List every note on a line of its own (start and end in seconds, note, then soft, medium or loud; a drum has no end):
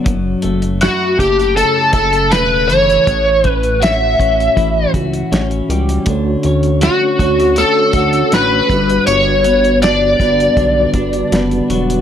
0.00 0.13 D3 medium
0.00 0.84 F#3 medium
0.00 0.13 B3 medium
0.00 0.13 D4 medium
0.04 0.36 F#1 loud
0.04 3.06 F#2 medium
0.04 kick loud
0.04 closed hi-hat medium
0.42 0.89 F#1 medium
0.42 1.17 A3 soft
0.42 closed hi-hat medium
0.62 closed hi-hat soft
0.81 1.93 E4 medium
0.81 1.20 F#4 medium
0.81 snare medium
0.81 closed hi-hat medium
1.17 1.64 F#1 loud
1.17 2.31 A3 medium
1.17 1.56 G4 medium
1.17 kick medium
1.17 closed hi-hat medium
1.40 closed hi-hat soft
1.56 3.14 C#3 medium
1.56 1.92 A4 medium
1.56 closed hi-hat medium
1.93 2.34 F#1 medium
1.93 3.80 E4 medium
1.93 2.32 A4 medium
1.93 kick medium
1.93 closed hi-hat medium
2.13 closed hi-hat soft
2.31 2.70 E1 medium
2.31 3.43 A3 medium
2.31 2.70 B4 medium
2.31 snare medium
2.31 closed hi-hat medium
2.68 2.99 G1 medium
2.68 3.83 E3 medium
2.68 3.49 C#5 medium
2.68 closed hi-hat soft
2.90 closed hi-hat soft
3.07 4.16 A1 loud
3.07 6.07 A2 medium
3.07 kick loud
3.07 closed hi-hat medium
3.44 4.19 C#4 medium
3.44 kick medium
3.44 closed hi-hat medium
3.49 3.84 B4 medium
3.63 closed hi-hat soft
3.80 4.94 F#4 medium
3.80 4.91 E5 medium
3.80 snare medium
3.80 closed hi-hat medium
4.19 4.49 A1 medium
4.19 5.32 C#4 medium
4.19 kick medium
4.19 closed hi-hat medium
4.40 closed hi-hat soft
4.56 4.87 A1 medium
4.56 6.07 E3 medium
4.56 kick medium
4.56 closed hi-hat medium
4.94 5.24 C#2 medium
4.94 6.82 F#4 medium
4.94 kick medium
4.94 closed hi-hat medium
5.14 closed hi-hat soft
5.32 5.62 A1 medium
5.32 6.45 C#4 medium
5.32 snare medium
5.32 closed hi-hat medium
5.51 closed hi-hat soft
5.69 5.99 C#2 medium
5.69 6.15 G3 medium
5.69 closed hi-hat medium
5.89 closed hi-hat soft
6.05 6.37 D2 loud
6.05 9.58 D3 medium
6.05 8.64 A3 medium
6.05 8.65 D4 medium
6.05 8.66 F#4 medium
6.05 kick loud
6.05 closed hi-hat medium
6.09 8.67 C#5 medium
6.43 6.89 D2 medium
6.43 7.19 C#4 medium
6.43 closed hi-hat medium
6.63 closed hi-hat soft
6.81 7.96 F#4 medium
6.81 7.60 F#4 medium
6.81 snare medium
6.81 closed hi-hat medium
7.19 7.64 D2 medium
7.19 8.32 C#4 medium
7.19 kick medium
7.19 closed hi-hat medium
7.40 closed hi-hat soft
7.56 8.77 A3 medium
7.56 8.35 A4 medium
7.56 closed hi-hat medium
7.93 8.24 D2 medium
7.93 9.12 F#4 medium
7.93 kick medium
7.93 closed hi-hat medium
8.13 closed hi-hat soft
8.32 8.62 A1 medium
8.32 8.78 C#4 medium
8.32 9.07 B4 medium
8.32 snare medium
8.32 closed hi-hat medium
8.67 9.00 G1 medium
8.67 9.08 G2 medium
8.67 12.01 G3 medium
8.67 12.01 D4 medium
8.67 12.01 F#4 medium
8.67 kick medium
8.67 closed hi-hat soft
8.72 12.01 B4 medium
8.89 closed hi-hat soft
9.07 10.16 G1 medium
9.07 12.01 G2 medium
9.07 9.78 C#5 medium
9.07 closed hi-hat medium
9.44 10.19 B3 medium
9.44 closed hi-hat medium
9.64 closed hi-hat soft
9.82 10.94 D4 medium
9.82 10.91 D5 medium
9.82 snare medium
9.82 closed hi-hat medium
10.20 10.50 G1 medium
10.20 11.32 B3 soft
10.20 kick medium
10.20 closed hi-hat medium
10.40 closed hi-hat soft
10.57 10.87 B1 loud
10.57 12.01 D3 medium
10.57 kick medium
10.57 closed hi-hat medium
10.94 11.24 G1 loud
10.94 12.01 D4 medium
10.94 kick medium
10.94 closed hi-hat medium
11.13 closed hi-hat soft
11.32 11.62 F#1 loud
11.32 12.01 B3 medium
11.32 snare medium
11.32 closed hi-hat medium
11.51 closed hi-hat soft
11.70 11.99 E1 medium
11.70 12.01 F#3 medium
11.70 closed hi-hat soft
11.90 closed hi-hat soft